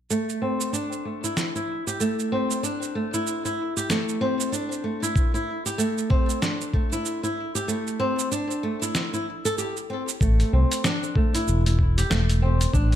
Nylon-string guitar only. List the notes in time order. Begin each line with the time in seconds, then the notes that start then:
0.10 A3
0.42 C4
0.73 D4
1.05 A3
1.24 E4
1.55 E4
1.87 G4
2.00 A3
2.32 C4
2.63 D4
2.95 A3
3.14 E4
3.45 E4
3.77 G4
3.90 A3
4.21 C4
4.52 D4
4.84 A3
5.02 E4
5.34 E4
5.66 G4
5.78 A3
6.10 C4
6.42 D4
6.74 A3
6.92 E4
7.23 E4
7.55 G4
7.68 A3
8.00 C4
8.32 D4
8.63 A3
8.82 E4
9.14 E4
9.45 A4
9.58 G4
9.90 C4
10.21 A3
10.53 C4
10.85 D4
11.16 A3
11.35 E4
11.66 E4
11.98 G4
12.10 A3
12.42 C4
12.73 D4